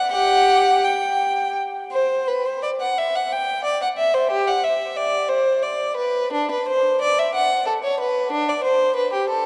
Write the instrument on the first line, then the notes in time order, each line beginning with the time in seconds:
violin
0.11 G4 F#5
0.84 G5
1.92 C5
2.28 B4
2.45 C5
2.63 D5
2.81 F#5
2.98 E5
3.15 F#5
3.32 G5
3.64 D5
3.82 F#5
3.98 E5
4.14 C5
4.31 G4
4.47 F#5
4.64 E5
4.96 D5
5.29 C5
5.63 D5
5.96 B4
6.32 D4
6.51 B4
6.68 C5
7.01 D5
7.19 E5
7.35 F#5
7.66 A4
7.84 C#5
8.00 B4
8.32 D4
8.49 D5
8.64 C5
8.96 B4
9.13 G4
9.29 A4